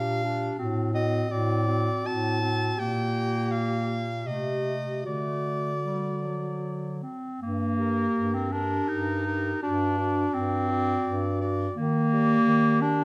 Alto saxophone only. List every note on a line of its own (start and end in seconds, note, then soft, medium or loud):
0.00 0.23 G4 medium
0.25 0.58 G4 soft
0.59 0.93 F#4 medium
0.93 1.28 F#4 medium
1.29 1.67 F#4 medium
1.68 2.04 F#4 medium
2.04 2.41 F#4 medium
2.41 2.77 F#4 soft
2.77 4.08 G4 medium
4.25 5.04 G4 medium
5.03 7.05 F#4 soft
7.77 8.50 G4 medium
8.51 9.24 G4 medium
9.25 9.61 G4 soft
9.61 9.97 F#4 medium
9.98 10.68 F#4 medium
10.69 11.39 F#4 medium
11.41 11.76 F#4 medium
12.13 12.81 G4 medium
12.82 13.04 G4 medium